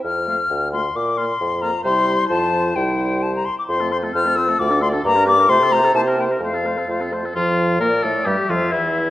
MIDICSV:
0, 0, Header, 1, 6, 480
1, 0, Start_track
1, 0, Key_signature, -1, "major"
1, 0, Tempo, 454201
1, 43, Time_signature, 2, 2, 24, 8
1, 6283, Tempo, 469116
1, 7723, Tempo, 453172
1, 9574, End_track
2, 0, Start_track
2, 0, Title_t, "Flute"
2, 0, Program_c, 0, 73
2, 43, Note_on_c, 0, 89, 80
2, 724, Note_off_c, 0, 89, 0
2, 768, Note_on_c, 0, 84, 78
2, 1015, Note_on_c, 0, 86, 69
2, 1031, Note_off_c, 0, 84, 0
2, 1242, Note_on_c, 0, 84, 79
2, 1258, Note_off_c, 0, 86, 0
2, 1710, Note_on_c, 0, 82, 83
2, 1726, Note_off_c, 0, 84, 0
2, 1943, Note_off_c, 0, 82, 0
2, 1949, Note_on_c, 0, 84, 95
2, 2414, Note_off_c, 0, 84, 0
2, 2420, Note_on_c, 0, 81, 99
2, 2914, Note_on_c, 0, 79, 83
2, 2930, Note_off_c, 0, 81, 0
2, 3406, Note_on_c, 0, 81, 73
2, 3422, Note_off_c, 0, 79, 0
2, 3530, Note_off_c, 0, 81, 0
2, 3551, Note_on_c, 0, 82, 65
2, 3646, Note_on_c, 0, 84, 74
2, 3662, Note_off_c, 0, 82, 0
2, 3773, Note_off_c, 0, 84, 0
2, 3791, Note_on_c, 0, 86, 63
2, 3843, Note_off_c, 0, 86, 0
2, 3884, Note_on_c, 0, 84, 82
2, 4126, Note_off_c, 0, 84, 0
2, 4136, Note_on_c, 0, 84, 83
2, 4200, Note_off_c, 0, 84, 0
2, 4375, Note_on_c, 0, 89, 88
2, 4607, Note_on_c, 0, 88, 89
2, 4622, Note_off_c, 0, 89, 0
2, 4852, Note_on_c, 0, 86, 91
2, 4868, Note_off_c, 0, 88, 0
2, 5087, Note_off_c, 0, 86, 0
2, 5093, Note_on_c, 0, 84, 102
2, 5156, Note_off_c, 0, 84, 0
2, 5341, Note_on_c, 0, 82, 111
2, 5568, Note_off_c, 0, 82, 0
2, 5573, Note_on_c, 0, 86, 112
2, 5803, Note_on_c, 0, 84, 116
2, 5819, Note_off_c, 0, 86, 0
2, 6045, Note_on_c, 0, 82, 115
2, 6060, Note_off_c, 0, 84, 0
2, 6280, Note_off_c, 0, 82, 0
2, 6287, Note_on_c, 0, 81, 114
2, 6348, Note_off_c, 0, 81, 0
2, 6523, Note_on_c, 0, 79, 76
2, 6584, Note_off_c, 0, 79, 0
2, 6765, Note_on_c, 0, 77, 65
2, 7472, Note_off_c, 0, 77, 0
2, 8203, Note_on_c, 0, 74, 64
2, 8685, Note_on_c, 0, 76, 69
2, 8701, Note_off_c, 0, 74, 0
2, 9574, Note_off_c, 0, 76, 0
2, 9574, End_track
3, 0, Start_track
3, 0, Title_t, "Oboe"
3, 0, Program_c, 1, 68
3, 297, Note_on_c, 1, 77, 46
3, 382, Note_off_c, 1, 77, 0
3, 771, Note_on_c, 1, 77, 43
3, 856, Note_off_c, 1, 77, 0
3, 1242, Note_on_c, 1, 77, 50
3, 1328, Note_off_c, 1, 77, 0
3, 1715, Note_on_c, 1, 77, 53
3, 1800, Note_off_c, 1, 77, 0
3, 1941, Note_on_c, 1, 72, 73
3, 2390, Note_off_c, 1, 72, 0
3, 2419, Note_on_c, 1, 72, 67
3, 2902, Note_off_c, 1, 72, 0
3, 2910, Note_on_c, 1, 72, 63
3, 3637, Note_off_c, 1, 72, 0
3, 3896, Note_on_c, 1, 72, 52
3, 4016, Note_on_c, 1, 69, 49
3, 4032, Note_off_c, 1, 72, 0
3, 4145, Note_on_c, 1, 72, 45
3, 4161, Note_off_c, 1, 69, 0
3, 4262, Note_on_c, 1, 69, 45
3, 4278, Note_off_c, 1, 72, 0
3, 4380, Note_off_c, 1, 69, 0
3, 4386, Note_on_c, 1, 72, 50
3, 4509, Note_on_c, 1, 69, 50
3, 4525, Note_off_c, 1, 72, 0
3, 4625, Note_on_c, 1, 72, 52
3, 4641, Note_off_c, 1, 69, 0
3, 4740, Note_on_c, 1, 69, 49
3, 4755, Note_off_c, 1, 72, 0
3, 4857, Note_off_c, 1, 69, 0
3, 4866, Note_on_c, 1, 74, 68
3, 4983, Note_on_c, 1, 69, 58
3, 4999, Note_off_c, 1, 74, 0
3, 5097, Note_on_c, 1, 74, 63
3, 5113, Note_off_c, 1, 69, 0
3, 5214, Note_on_c, 1, 69, 61
3, 5230, Note_off_c, 1, 74, 0
3, 5324, Note_off_c, 1, 69, 0
3, 5331, Note_on_c, 1, 74, 66
3, 5454, Note_on_c, 1, 70, 67
3, 5469, Note_off_c, 1, 74, 0
3, 5579, Note_on_c, 1, 74, 60
3, 5595, Note_off_c, 1, 70, 0
3, 5704, Note_on_c, 1, 70, 56
3, 5720, Note_off_c, 1, 74, 0
3, 5814, Note_off_c, 1, 70, 0
3, 5820, Note_on_c, 1, 72, 76
3, 5948, Note_on_c, 1, 69, 68
3, 5964, Note_off_c, 1, 72, 0
3, 6069, Note_on_c, 1, 72, 67
3, 6085, Note_off_c, 1, 69, 0
3, 6174, Note_on_c, 1, 69, 70
3, 6190, Note_off_c, 1, 72, 0
3, 6289, Note_off_c, 1, 69, 0
3, 6306, Note_on_c, 1, 72, 67
3, 6414, Note_on_c, 1, 70, 60
3, 6429, Note_off_c, 1, 72, 0
3, 6545, Note_on_c, 1, 72, 56
3, 6561, Note_off_c, 1, 70, 0
3, 6659, Note_on_c, 1, 70, 42
3, 6674, Note_off_c, 1, 72, 0
3, 6770, Note_off_c, 1, 70, 0
3, 6782, Note_on_c, 1, 72, 52
3, 6891, Note_on_c, 1, 69, 45
3, 6907, Note_off_c, 1, 72, 0
3, 7014, Note_on_c, 1, 72, 46
3, 7029, Note_off_c, 1, 69, 0
3, 7131, Note_on_c, 1, 69, 39
3, 7147, Note_off_c, 1, 72, 0
3, 7247, Note_off_c, 1, 69, 0
3, 7256, Note_on_c, 1, 72, 45
3, 7367, Note_on_c, 1, 69, 42
3, 7382, Note_off_c, 1, 72, 0
3, 7493, Note_on_c, 1, 72, 40
3, 7508, Note_off_c, 1, 69, 0
3, 7619, Note_on_c, 1, 69, 38
3, 7634, Note_off_c, 1, 72, 0
3, 7717, Note_off_c, 1, 69, 0
3, 7723, Note_on_c, 1, 65, 86
3, 8170, Note_off_c, 1, 65, 0
3, 8201, Note_on_c, 1, 70, 84
3, 8439, Note_on_c, 1, 69, 73
3, 8455, Note_off_c, 1, 70, 0
3, 8678, Note_on_c, 1, 67, 83
3, 8694, Note_off_c, 1, 69, 0
3, 8936, Note_on_c, 1, 65, 76
3, 8952, Note_off_c, 1, 67, 0
3, 9172, Note_on_c, 1, 64, 64
3, 9188, Note_off_c, 1, 65, 0
3, 9574, Note_off_c, 1, 64, 0
3, 9574, End_track
4, 0, Start_track
4, 0, Title_t, "Clarinet"
4, 0, Program_c, 2, 71
4, 291, Note_on_c, 2, 65, 43
4, 377, Note_off_c, 2, 65, 0
4, 764, Note_on_c, 2, 65, 44
4, 851, Note_off_c, 2, 65, 0
4, 1246, Note_on_c, 2, 65, 53
4, 1331, Note_off_c, 2, 65, 0
4, 1724, Note_on_c, 2, 65, 57
4, 1807, Note_off_c, 2, 65, 0
4, 1950, Note_on_c, 2, 64, 70
4, 2430, Note_on_c, 2, 65, 74
4, 2446, Note_off_c, 2, 64, 0
4, 2916, Note_on_c, 2, 64, 65
4, 2932, Note_off_c, 2, 65, 0
4, 3654, Note_off_c, 2, 64, 0
4, 3893, Note_on_c, 2, 65, 54
4, 4015, Note_on_c, 2, 60, 46
4, 4031, Note_off_c, 2, 65, 0
4, 4141, Note_on_c, 2, 65, 49
4, 4157, Note_off_c, 2, 60, 0
4, 4262, Note_on_c, 2, 60, 51
4, 4278, Note_off_c, 2, 65, 0
4, 4371, Note_off_c, 2, 60, 0
4, 4377, Note_on_c, 2, 65, 53
4, 4496, Note_on_c, 2, 60, 49
4, 4512, Note_off_c, 2, 65, 0
4, 4618, Note_on_c, 2, 65, 49
4, 4634, Note_off_c, 2, 60, 0
4, 4734, Note_on_c, 2, 60, 53
4, 4750, Note_off_c, 2, 65, 0
4, 4843, Note_off_c, 2, 60, 0
4, 4849, Note_on_c, 2, 65, 62
4, 4974, Note_on_c, 2, 62, 56
4, 4990, Note_off_c, 2, 65, 0
4, 5091, Note_on_c, 2, 65, 61
4, 5107, Note_off_c, 2, 62, 0
4, 5213, Note_on_c, 2, 62, 61
4, 5229, Note_off_c, 2, 65, 0
4, 5326, Note_off_c, 2, 62, 0
4, 5333, Note_on_c, 2, 67, 65
4, 5446, Note_on_c, 2, 70, 66
4, 5462, Note_off_c, 2, 67, 0
4, 5569, Note_on_c, 2, 67, 67
4, 5585, Note_off_c, 2, 70, 0
4, 5682, Note_on_c, 2, 70, 64
4, 5698, Note_off_c, 2, 67, 0
4, 5787, Note_off_c, 2, 70, 0
4, 5793, Note_on_c, 2, 65, 78
4, 5914, Note_on_c, 2, 69, 68
4, 5930, Note_off_c, 2, 65, 0
4, 6041, Note_on_c, 2, 65, 70
4, 6057, Note_off_c, 2, 69, 0
4, 6160, Note_on_c, 2, 69, 65
4, 6176, Note_off_c, 2, 65, 0
4, 6267, Note_off_c, 2, 69, 0
4, 6273, Note_on_c, 2, 64, 61
4, 6390, Note_on_c, 2, 67, 55
4, 6406, Note_off_c, 2, 64, 0
4, 6513, Note_on_c, 2, 64, 52
4, 6529, Note_off_c, 2, 67, 0
4, 6641, Note_on_c, 2, 67, 47
4, 6656, Note_off_c, 2, 64, 0
4, 6752, Note_off_c, 2, 67, 0
4, 6758, Note_on_c, 2, 65, 51
4, 6883, Note_on_c, 2, 69, 44
4, 6899, Note_off_c, 2, 65, 0
4, 7008, Note_on_c, 2, 65, 43
4, 7024, Note_off_c, 2, 69, 0
4, 7121, Note_on_c, 2, 69, 41
4, 7136, Note_off_c, 2, 65, 0
4, 7235, Note_off_c, 2, 69, 0
4, 7241, Note_on_c, 2, 65, 44
4, 7362, Note_on_c, 2, 69, 40
4, 7377, Note_off_c, 2, 65, 0
4, 7485, Note_on_c, 2, 65, 40
4, 7500, Note_off_c, 2, 69, 0
4, 7605, Note_on_c, 2, 69, 40
4, 7620, Note_off_c, 2, 65, 0
4, 7720, Note_off_c, 2, 69, 0
4, 7726, Note_on_c, 2, 53, 71
4, 8172, Note_off_c, 2, 53, 0
4, 8204, Note_on_c, 2, 58, 65
4, 8312, Note_off_c, 2, 58, 0
4, 8447, Note_on_c, 2, 57, 64
4, 8681, Note_off_c, 2, 57, 0
4, 8686, Note_on_c, 2, 55, 77
4, 8794, Note_off_c, 2, 55, 0
4, 8925, Note_on_c, 2, 53, 65
4, 9033, Note_off_c, 2, 53, 0
4, 9169, Note_on_c, 2, 52, 58
4, 9574, Note_off_c, 2, 52, 0
4, 9574, End_track
5, 0, Start_track
5, 0, Title_t, "French horn"
5, 0, Program_c, 3, 60
5, 285, Note_on_c, 3, 57, 45
5, 372, Note_off_c, 3, 57, 0
5, 771, Note_on_c, 3, 57, 43
5, 856, Note_off_c, 3, 57, 0
5, 1246, Note_on_c, 3, 58, 52
5, 1330, Note_off_c, 3, 58, 0
5, 1720, Note_on_c, 3, 58, 55
5, 1804, Note_off_c, 3, 58, 0
5, 1947, Note_on_c, 3, 55, 72
5, 2394, Note_off_c, 3, 55, 0
5, 2426, Note_on_c, 3, 53, 68
5, 2905, Note_off_c, 3, 53, 0
5, 2916, Note_on_c, 3, 55, 63
5, 3639, Note_off_c, 3, 55, 0
5, 3904, Note_on_c, 3, 60, 55
5, 4026, Note_on_c, 3, 57, 45
5, 4041, Note_off_c, 3, 60, 0
5, 4140, Note_on_c, 3, 60, 51
5, 4156, Note_off_c, 3, 57, 0
5, 4259, Note_on_c, 3, 57, 43
5, 4275, Note_off_c, 3, 60, 0
5, 4375, Note_off_c, 3, 57, 0
5, 4381, Note_on_c, 3, 60, 52
5, 4493, Note_on_c, 3, 57, 49
5, 4509, Note_off_c, 3, 60, 0
5, 4608, Note_on_c, 3, 60, 52
5, 4624, Note_off_c, 3, 57, 0
5, 4730, Note_on_c, 3, 57, 57
5, 4746, Note_off_c, 3, 60, 0
5, 4846, Note_off_c, 3, 57, 0
5, 4852, Note_on_c, 3, 57, 60
5, 4969, Note_on_c, 3, 62, 54
5, 4985, Note_off_c, 3, 57, 0
5, 5091, Note_on_c, 3, 57, 61
5, 5107, Note_off_c, 3, 62, 0
5, 5215, Note_on_c, 3, 62, 60
5, 5231, Note_off_c, 3, 57, 0
5, 5318, Note_off_c, 3, 62, 0
5, 5325, Note_on_c, 3, 58, 65
5, 5447, Note_on_c, 3, 62, 59
5, 5463, Note_off_c, 3, 58, 0
5, 5560, Note_on_c, 3, 58, 69
5, 5576, Note_off_c, 3, 62, 0
5, 5675, Note_on_c, 3, 62, 61
5, 5690, Note_off_c, 3, 58, 0
5, 5786, Note_off_c, 3, 62, 0
5, 5792, Note_on_c, 3, 57, 80
5, 5912, Note_on_c, 3, 60, 62
5, 5928, Note_off_c, 3, 57, 0
5, 6033, Note_on_c, 3, 57, 72
5, 6049, Note_off_c, 3, 60, 0
5, 6145, Note_on_c, 3, 60, 54
5, 6161, Note_off_c, 3, 57, 0
5, 6265, Note_off_c, 3, 60, 0
5, 6271, Note_on_c, 3, 58, 64
5, 6392, Note_on_c, 3, 60, 56
5, 6408, Note_off_c, 3, 58, 0
5, 6512, Note_on_c, 3, 58, 56
5, 6527, Note_off_c, 3, 60, 0
5, 6632, Note_on_c, 3, 60, 50
5, 6647, Note_off_c, 3, 58, 0
5, 6753, Note_off_c, 3, 60, 0
5, 6759, Note_on_c, 3, 57, 49
5, 6881, Note_on_c, 3, 60, 43
5, 6897, Note_off_c, 3, 57, 0
5, 7005, Note_on_c, 3, 57, 48
5, 7020, Note_off_c, 3, 60, 0
5, 7126, Note_on_c, 3, 60, 40
5, 7141, Note_off_c, 3, 57, 0
5, 7233, Note_off_c, 3, 60, 0
5, 7239, Note_on_c, 3, 57, 39
5, 7363, Note_on_c, 3, 60, 37
5, 7379, Note_off_c, 3, 57, 0
5, 7490, Note_on_c, 3, 57, 37
5, 7505, Note_off_c, 3, 60, 0
5, 7616, Note_on_c, 3, 60, 39
5, 7631, Note_off_c, 3, 57, 0
5, 7719, Note_off_c, 3, 60, 0
5, 7725, Note_on_c, 3, 53, 71
5, 8171, Note_off_c, 3, 53, 0
5, 8206, Note_on_c, 3, 58, 71
5, 8313, Note_off_c, 3, 58, 0
5, 8451, Note_on_c, 3, 57, 65
5, 8557, Note_off_c, 3, 57, 0
5, 8685, Note_on_c, 3, 55, 78
5, 8920, Note_off_c, 3, 55, 0
5, 8927, Note_on_c, 3, 53, 63
5, 9163, Note_on_c, 3, 52, 58
5, 9179, Note_off_c, 3, 53, 0
5, 9574, Note_off_c, 3, 52, 0
5, 9574, End_track
6, 0, Start_track
6, 0, Title_t, "Bassoon"
6, 0, Program_c, 4, 70
6, 47, Note_on_c, 4, 41, 57
6, 449, Note_off_c, 4, 41, 0
6, 528, Note_on_c, 4, 38, 58
6, 926, Note_off_c, 4, 38, 0
6, 1011, Note_on_c, 4, 46, 60
6, 1403, Note_off_c, 4, 46, 0
6, 1485, Note_on_c, 4, 41, 61
6, 1876, Note_off_c, 4, 41, 0
6, 1952, Note_on_c, 4, 48, 80
6, 2302, Note_off_c, 4, 48, 0
6, 2436, Note_on_c, 4, 41, 76
6, 2910, Note_off_c, 4, 41, 0
6, 2914, Note_on_c, 4, 36, 62
6, 3639, Note_off_c, 4, 36, 0
6, 3899, Note_on_c, 4, 41, 68
6, 4321, Note_off_c, 4, 41, 0
6, 4384, Note_on_c, 4, 41, 64
6, 4802, Note_off_c, 4, 41, 0
6, 4860, Note_on_c, 4, 38, 78
6, 5277, Note_off_c, 4, 38, 0
6, 5333, Note_on_c, 4, 43, 83
6, 5751, Note_off_c, 4, 43, 0
6, 5804, Note_on_c, 4, 48, 91
6, 6225, Note_off_c, 4, 48, 0
6, 6277, Note_on_c, 4, 48, 87
6, 6700, Note_off_c, 4, 48, 0
6, 6750, Note_on_c, 4, 41, 64
6, 7181, Note_off_c, 4, 41, 0
6, 7241, Note_on_c, 4, 41, 52
6, 7665, Note_off_c, 4, 41, 0
6, 7729, Note_on_c, 4, 41, 69
6, 8205, Note_on_c, 4, 46, 77
6, 8221, Note_off_c, 4, 41, 0
6, 8444, Note_off_c, 4, 46, 0
6, 8450, Note_on_c, 4, 45, 62
6, 8676, Note_off_c, 4, 45, 0
6, 8682, Note_on_c, 4, 43, 68
6, 8791, Note_off_c, 4, 43, 0
6, 8932, Note_on_c, 4, 41, 68
6, 9157, Note_off_c, 4, 41, 0
6, 9163, Note_on_c, 4, 40, 58
6, 9574, Note_off_c, 4, 40, 0
6, 9574, End_track
0, 0, End_of_file